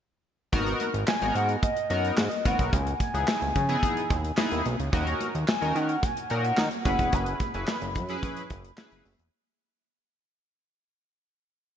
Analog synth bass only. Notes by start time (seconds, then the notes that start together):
0.53 G#1
0.94 G#1
1.22 G#1
1.35 G#2
1.90 F#2
2.18 G#2
2.45 G#1
2.59 B1
2.73 C#2
3.14 C#2
3.42 C#2
3.56 C#3
4.11 D#2
4.52 D#2
4.66 B1
4.80 C#2
4.93 D#2
5.35 D#2
5.62 D#2
5.75 D#3
6.31 A#2
6.58 D#3
6.86 F#1
6.99 E1
7.13 F#1
7.55 F#1
7.82 F#1
7.96 F#2
8.50 F#1
8.92 F#1
9.05 F#1
9.19 E1